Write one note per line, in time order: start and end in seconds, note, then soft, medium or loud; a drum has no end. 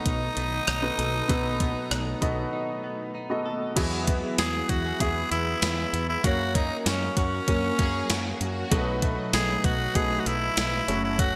0.00 0.98 B2 medium
0.00 1.29 F#3 medium
0.00 3.73 A3 medium
0.00 0.36 B3 medium
0.00 0.82 B3 medium
0.00 3.73 B3 medium
0.00 3.11 D#4 loud
0.00 3.73 D#4 medium
0.00 0.83 F#4 medium
0.00 0.83 A4 medium
0.00 0.97 A4 medium
0.00 2.22 D#5 loud
0.06 0.28 B1 loud
0.06 0.66 D#4 medium
0.06 kick medium
0.06 closed hi-hat medium
0.37 0.59 B1 medium
0.37 1.60 B3 medium
0.37 closed hi-hat medium
0.67 0.90 B1 medium
0.67 1.90 D#4 medium
0.67 cross-stick loud
0.67 closed hi-hat medium
0.82 1.22 B3 medium
0.82 1.22 F#4 medium
0.82 1.22 A4 medium
0.82 1.23 B4 medium
0.98 1.21 B1 loud
0.98 1.87 B2 medium
0.98 1.29 A4 medium
0.98 closed hi-hat medium
1.28 1.74 B1 medium
1.28 3.76 F#3 medium
1.28 2.08 B3 medium
1.28 2.08 F#4 medium
1.28 2.08 A4 medium
1.28 3.44 A4 medium
1.28 2.08 B4 medium
1.28 kick loud
1.28 closed hi-hat medium
1.60 2.22 B3 medium
1.60 kick medium
1.60 closed hi-hat medium
1.91 2.13 B1 medium
1.91 2.52 D#4 medium
1.91 cross-stick medium
1.91 closed hi-hat medium
2.21 2.44 B1 loud
2.21 3.13 B3 medium
2.21 2.83 B3 medium
2.21 3.14 F#4 medium
2.21 3.14 A4 medium
2.21 3.14 D#5 medium
2.21 kick medium
2.21 closed hi-hat medium
2.53 3.14 D#4 medium
2.84 4.07 B3 medium
3.15 3.83 D#4 medium
3.30 3.69 B3 medium
3.30 3.70 F#4 medium
3.30 3.70 A4 medium
3.30 3.70 D#5 medium
3.46 3.83 A4 medium
3.76 4.21 E2 loud
3.76 4.65 E3 medium
3.76 6.20 E3 medium
3.76 7.27 F#3 medium
3.76 4.81 B3 medium
3.76 6.20 B3 medium
3.76 4.81 F#4 medium
3.76 6.20 G#4 medium
3.76 4.82 G#4 medium
3.76 6.22 G#4 medium
3.76 6.22 E5 medium
3.76 4.82 E5 loud
3.76 6.22 F#5 medium
3.76 6.22 B5 medium
3.76 kick loud
3.76 closed hi-hat medium
3.76 crash loud
4.07 5.30 B3 medium
4.07 kick loud
4.07 closed hi-hat medium
4.38 4.61 E2 loud
4.38 4.99 E4 medium
4.38 4.71 G#4 loud
4.38 snare loud
4.38 closed hi-hat medium
4.38 tambourine medium
4.69 4.92 E2 medium
4.69 4.85 F#4 medium
4.69 5.02 F#4 loud
4.69 kick medium
4.69 closed hi-hat medium
4.85 6.30 G#4 medium
5.00 5.23 E2 loud
5.00 6.05 B3 medium
5.00 5.61 E4 medium
5.00 6.05 F#4 medium
5.00 5.31 G#4 loud
5.00 6.05 G#4 medium
5.00 6.06 E5 medium
5.00 kick medium
5.00 closed hi-hat medium
5.31 5.54 E2 medium
5.31 5.92 B3 medium
5.31 6.05 E4 loud
5.31 closed hi-hat medium
5.62 5.84 E2 loud
5.62 6.30 E4 medium
5.62 snare loud
5.62 closed hi-hat medium
5.62 tambourine medium
5.93 6.15 E2 loud
5.93 6.24 B3 medium
5.93 closed hi-hat medium
6.09 6.26 E4 loud
6.23 6.69 F#2 loud
6.23 8.68 F#3 medium
6.23 7.29 A#3 medium
6.23 6.54 A#3 medium
6.23 7.29 C#4 medium
6.23 8.68 C#4 medium
6.23 7.29 F#4 medium
6.23 6.57 F#4 loud
6.23 8.68 A#4 medium
6.23 8.69 A#4 medium
6.23 8.69 C#5 medium
6.23 7.29 C#5 medium
6.23 10.84 F#5 medium
6.23 8.69 C#6 medium
6.23 kick loud
6.23 closed hi-hat medium
6.55 7.77 A#3 medium
6.55 6.80 D#4 medium
6.55 kick loud
6.55 closed hi-hat medium
6.80 6.88 D#4 medium
6.86 7.08 F#2 medium
6.86 7.47 C#4 medium
6.86 7.17 C#4 medium
6.86 snare loud
6.86 closed hi-hat medium
6.86 tambourine medium
7.17 7.39 F#2 loud
7.17 8.37 C#4 medium
7.17 9.64 F#4 medium
7.17 kick medium
7.17 closed hi-hat medium
7.47 7.70 F#2 loud
7.47 8.52 A#3 medium
7.47 8.53 C#4 medium
7.47 8.09 C#4 medium
7.47 8.53 F#4 medium
7.47 8.53 A#4 medium
7.47 kick medium
7.47 closed hi-hat medium
7.79 8.01 F#2 loud
7.79 8.39 A#3 medium
7.79 8.08 G#4 loud
7.79 kick loud
7.79 closed hi-hat medium
8.10 8.32 F#2 loud
8.10 8.78 C#4 medium
8.10 8.34 F#4 loud
8.10 snare loud
8.10 closed hi-hat medium
8.10 tambourine medium
8.34 8.41 G#4 medium
8.40 8.63 F#2 loud
8.40 8.78 A#3 medium
8.40 9.18 F#4 loud
8.40 closed hi-hat medium
8.71 9.16 B1 loud
8.71 9.60 B2 medium
8.71 10.84 F#3 medium
8.71 10.87 F#3 medium
8.71 9.76 A3 medium
8.71 11.36 A3 medium
8.71 9.76 D#4 medium
8.71 9.77 F#4 medium
8.71 8.78 A4 medium
8.71 10.84 B4 medium
8.71 10.86 D#5 medium
8.71 10.84 D#5 medium
8.71 10.86 B5 medium
8.71 kick loud
8.71 closed hi-hat loud
8.79 9.80 B4 loud
9.02 10.26 A3 medium
9.02 kick medium
9.02 closed hi-hat medium
9.33 9.56 B1 loud
9.33 9.95 D#4 medium
9.33 9.67 G#4 loud
9.33 snare loud
9.33 closed hi-hat medium
9.33 tambourine medium
9.64 9.87 B1 loud
9.64 11.36 F#4 medium
9.64 9.97 F#4 loud
9.64 kick medium
9.64 closed hi-hat medium
9.95 10.18 B1 loud
9.95 10.86 A3 medium
9.95 10.11 C#4 medium
9.95 10.87 F#4 medium
9.95 10.21 G#4 loud
9.95 10.88 B4 medium
9.95 10.88 D#5 medium
9.95 kick medium
9.95 closed hi-hat medium
10.11 10.56 D#4 medium
10.20 10.28 F#4 medium
10.26 10.48 B1 loud
10.26 11.36 A3 medium
10.26 11.03 E4 loud
10.26 closed hi-hat medium
10.57 10.79 B1 loud
10.57 10.94 D#4 medium
10.57 snare loud
10.57 closed hi-hat medium
10.57 tambourine medium
10.87 11.36 F#1 loud
10.87 11.18 F#3 medium
10.87 11.36 F#3 medium
10.87 11.36 A3 medium
10.87 11.36 C#4 medium
10.87 11.36 F#4 medium
10.87 11.36 C#5 medium
10.87 11.36 F#5 medium
10.87 11.36 C#6 medium
10.87 closed hi-hat medium
11.04 11.21 E4 loud
11.19 11.36 F#3 medium
11.19 11.36 F#4 loud
11.19 kick loud
11.19 closed hi-hat medium